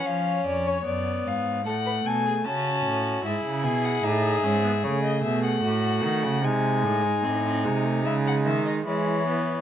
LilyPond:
<<
  \new Staff \with { instrumentName = "Violin" } { \time 4/4 \key cis \phrygian \tempo 4 = 75 eis''8 d''16 cis''16 d''8 eis''8 fis''8 gis''8 a''4 | e''8 gis''16 fis''16 e''4 cis''16 dis''16 e''16 fis''4~ fis''16 | gis''2 e''16 fis''16 e''16 dis''16 cis''4 | }
  \new Staff \with { instrumentName = "Violin" } { \time 4/4 \key cis \phrygian cis''2 a'16 b'16 a'16 gis'16 fis'4 | gis'2. fis'4 | dis'2. e'4 | }
  \new Staff \with { instrumentName = "Viola" } { \time 4/4 \key cis \phrygian cis'4 b4 a4 cis'4 | e'4 dis'8 cis'16 b16 a2 | gis4 bis16 bis16 gis16 a16 gis4 gis8 b8 | }
  \new Staff \with { instrumentName = "Cello" } { \clef bass \time 4/4 \key cis \phrygian eis8 eis,8 fis,8 gis,8 a,8 b,8 cis8 a,8 | gis,16 cis16 b,8 a,8 gis,8 cis8 b,8 a,8 dis16 cis16 | bis,8 a,16 gis,16 a,8 bis,8 cis8 dis8 e4 | }
>>